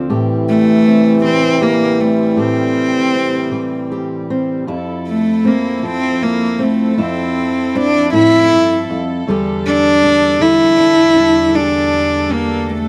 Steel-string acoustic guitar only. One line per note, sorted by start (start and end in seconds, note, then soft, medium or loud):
0.00 0.10 D2 medium
0.00 0.11 D3 medium
0.00 0.86 C4 medium
0.10 2.35 A2 medium
0.10 1.60 G4 medium
0.86 2.00 C4 medium
1.24 3.51 E3 medium
1.61 2.33 G4 medium
2.00 3.14 C4 medium
2.36 4.67 A2 medium
2.36 3.91 G4 medium
3.14 4.29 C4 medium
3.52 4.63 E3 medium
3.92 4.64 G4 medium
4.30 4.64 C4 medium
4.67 6.93 F2 medium
4.67 6.22 E4 medium
5.45 6.58 C4 medium
5.83 6.93 F3 medium
6.22 6.98 E4 medium
6.59 6.93 C4 medium
6.97 8.50 F2 medium
6.97 9.30 E4 medium
7.75 9.22 C4 medium
8.12 8.50 A2 medium
8.52 8.89 G2 medium
8.90 9.27 F2 medium
9.27 11.49 E2 medium
9.27 10.38 D3 medium
9.27 12.88 G3 medium
9.27 10.03 D4 medium
9.27 11.50 G4 medium
10.04 10.78 D4 medium
10.40 12.88 D3 medium
10.79 11.15 D4 medium
11.16 11.49 D4 medium
11.54 12.88 E2 medium
11.54 12.88 G4 medium
12.29 12.88 D4 medium